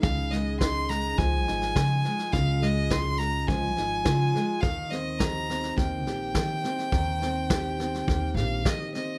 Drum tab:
SD |o-o-o-o-o-ooo-oo|o-o-o-o-o-o-o-o-|o-o-o-ooo-o-o-oo|o-o-o-ooo-o-o-o-|
BD |o---o---o---o---|o---o---o---o---|o---o---o---o---|o---o---o---o---|